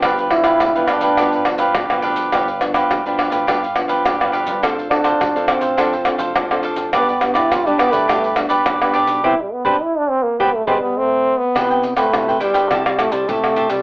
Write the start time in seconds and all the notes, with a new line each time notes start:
Already playing: F3 B3 D4
0.02 G1 G2 D4 G4 B4 F5, pandeiro, tamborim, maracas, surdo
0.18 G4 B4 F5, pandeiro, maracas
0.30 F3 B3 D4 E4, pandeiro, tamborim
0.44 G4 B4 F5, pandeiro, tamborim, maracas, surdo
0.60 G1 D3, pandeiro, tamborim, maracas, surdo
0.75 F3 B3 D4 G4 B4 F5, pandeiro, maracas
0.88 D4 G4 B4 F5, pandeiro, tamborim, maracas
1.01 D2 G4 B4 F5, pandeiro, maracas, surdo
1.17 G1 G2 F3 B3 D4 G4 B4 F5, pandeiro, tamborim, maracas, surdo
1.33 G4 B4 F5, pandeiro, maracas
1.45 F3 B3 D4, pandeiro, tamborim, maracas
1.58 G1 G4 B4 F5, pandeiro, maracas, surdo
1.75 G1 D3 D4 G4 B4 F5, pandeiro, tamborim, maracas, surdo
1.90 B1 F3 B3 D4 G4 B4 F5, pandeiro, tamborim, maracas
2.02 A1 D4 G4 B4 F5, pandeiro
2.16 G1, pandeiro, maracas, surdo
2.32 G1 G2 F3 B3 D4 G4 B4 F5, pandeiro, tamborim, maracas, surdo
2.48 G4 B4 F5, pandeiro, maracas
2.61 F3 B3 D4, muted cavaquinho stroke, pandeiro, tamborim, maracas
2.74 G4 B4 F5, pandeiro, tamborim, maracas, surdo
2.90 G1 D3, pandeiro, tamborim, maracas, surdo
3.06 F3 B3 D4 G4 B4 F5, pandeiro, maracas
3.18 D4 G4 B4 F5, pandeiro, tamborim
3.30 D2 G4 B4 F5, pandeiro, maracas, surdo
3.47 G1 G2 F3 B3 D4 G4 B4 F5, pandeiro, tamborim, maracas, surdo
3.63 G4 B4 F5, pandeiro, maracas
3.75 F3 B3 D4, muted cavaquinho stroke, pandeiro, tamborim
3.88 G1 G4 B4 F5, pandeiro, maracas, surdo
4.05 G1 D3 D4 G4 B4 F5, pandeiro, tamborim, maracas, surdo
4.20 F3 B3 D4 G4 B4 F5, pandeiro, tamborim, maracas
4.32 D4 G4 B4 F5, pandeiro
4.46 G2, pandeiro, maracas, surdo
4.62 F1 F3 C4 D4 A4 C5 F5, pandeiro, tamborim, maracas, surdo
4.78 A4 C5 F5, pandeiro, maracas
4.90 C4 D4 A4, muted cavaquinho stroke, pandeiro, tamborim
5.04 A4 C5 F5, pandeiro, tamborim, maracas, surdo
5.20 F1 F3, pandeiro, tamborim, maracas, surdo
5.36 C4 D4 A4 C5 F5, pandeiro, maracas
5.48 C4 D4 A4 C5 F5, pandeiro, tamborim, maracas
5.61 A1 A4 C5 F5, pandeiro, maracas, surdo
5.77 F1 F3 C4 D4 A4 C5 F5, pandeiro, tamborim, maracas, surdo
5.92 A4 C5 F5, pandeiro, maracas
6.05 C4 D4 A4, muted cavaquinho stroke, pandeiro, tamborim, maracas
6.18 F1 A4 C5 F5, pandeiro, maracas, surdo
6.35 F1 F3 D4 A4 C5 F5, pandeiro, tamborim, maracas, surdo
6.51 C4 D4 A4 C5 F5, pandeiro, tamborim, maracas
6.63 D4 A4 C5 F5, pandeiro
6.76 F1, pandeiro, maracas, surdo
6.93 G1 G2 G3 B3 D4 G4 B4 D5, pandeiro, tamborim, maracas, surdo
7.09 G4 B4 D5, pandeiro, maracas
7.21 G3 B3 D4, muted cavaquinho stroke, pandeiro, tamborim, maracas
7.34 E4 G4 B4 D5, pandeiro, tamborim, maracas, surdo
7.51 G1 D3 F4, pandeiro, tamborim, maracas, surdo
7.65 G3 B3 D4 G4 B4 D5, pandeiro, maracas
7.78 B3 D4 G4 B4 D5, pandeiro, tamborim, maracas
7.91 D2 A3 G4 B4 D5, pandeiro, maracas, surdo
8.08 G1 G2 G3 B3 D4 G4 B4 D5, pandeiro, tamborim, maracas, surdo
8.24 G4 B4 D5, pandeiro, maracas
8.36 G3 B3 D4, muted cavaquinho stroke, pandeiro, tamborim, maracas
8.49 G1 G4 B4 D5, pandeiro, maracas, surdo
8.66 G1 D3 D4 G4 B4 D5, pandeiro, tamborim, maracas, surdo
8.81 G3 B3 D4 G4 B4 D5, pandeiro, tamborim, maracas
8.94 D4 G4 B4 D5, pandeiro
9.07 B1, pandeiro, maracas, surdo
9.24 C2 G3 B3 C4 E4 G4 B4 C5, surdo
9.41 G3
9.53 B3
9.64 C2 G3 B3 C4 D4 G4 B4 C5, surdo
9.83 E4
9.97 D4
10.10 C4
10.23 A#3
10.39 C2 G3 B3 C4 G4 B4 C5, surdo
10.55 A3
10.67 C2 G3 G#3 B3 C4 G4 B4 C5, surdo
10.81 G3 B3
10.97 A3 C4
11.39 B3
11.55 C3 G3 B3 E4 B4 C5 G5, pandeiro, tamborim, maracas, surdo
11.70 B4 C5 G5, pandeiro, maracas
11.83 muted cavaquinho stroke, pandeiro, maracas
11.96 A3 B4 C5 G5, pandeiro, tamborim, maracas, surdo
12.13 G2 C3 G3 B3 E4, pandeiro, tamborim, maracas, surdo
12.28 B4 C5 G5, pandeiro, maracas
12.40 G3 B3 E4 B4 C5 G5, pandeiro, maracas
12.54 G2 B4 C5 G5, pandeiro, maracas, surdo
12.71 C3 G3 A3 E4 G4 C5 E5 A5, pandeiro, tamborim, maracas, surdo
12.86 G3 C5 E5, pandeiro, tamborim, maracas
12.99 G3 A3 E4, muted cavaquinho stroke, pandeiro, tamborim, maracas, surdo
13.12 C3 G3 C5 E5 A5, pandeiro, maracas, surdo
13.28 C3 G3 A3 E4 G4 C5 E5 A5, pandeiro, maracas, surdo
13.44 G3 A3 E4, pandeiro, tamborim, maracas
13.56 G4 C5 E5 A5, pandeiro, maracas
13.70 C3 G3 C5 E5 A5, pandeiro, maracas, surdo